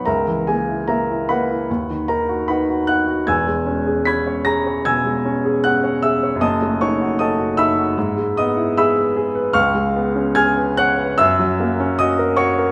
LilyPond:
\new Staff \with { instrumentName = "Grand piano" } { \time 4/4 \key e \lydian \tempo 4 = 76 << { <ais' e'' ais''>8 <gis' gis''>8 <ais' e'' ais''>8 <b' fis'' b''>4 <ais' ais''>8 <b' fis'' b''>8 <fis'' fis'''>8 | <gis'' e''' gis'''>4 <b'' gis''' b'''>8 <ais'' ais'''>8 <gis'' e''' gis'''>4 <fis'' fis'''>8 <e'' e'''>8 | <dis'' a'' dis'''>8 <cis'' cis'''>8 <dis'' a'' dis'''>8 <e'' b'' e'''>4 <dis'' dis'''>8 <e'' b'' e'''>8 r8 | <eis'' cis''' eis'''>4 <gis'' eis''' gis'''>8 <fis'' fis'''>8 <e'' e'''>4 <dis'' dis'''>8 <cis'' cis'''>8 | } \\ { cis,16 e16 ais16 e'16 ais16 e'16 ais16 e'16 dis,16 dis16 dis'16 fis'16 dis'16 fis'16 dis'16 fis'16 | <e,, e,>16 gis16 cis'16 gis'16 cis'16 cis''16 gis'16 cis''16 b,16 gis16 cis'16 gis'16 cis'16 cis''16 gis'16 cis''16 | <fis,, fis,>16 a16 dis'16 fis'16 a'16 fis'16 dis'16 fis'16 gis,16 gis16 b16 e'16 gis'16 b'16 gis'16 b'16 | cis,16 gis16 b16 cis'16 gis'16 b'16 cis''16 b'16 fis,16 fis16 ais16 cis'16 fis'16 ais'16 fis'16 ais'16 | } >> }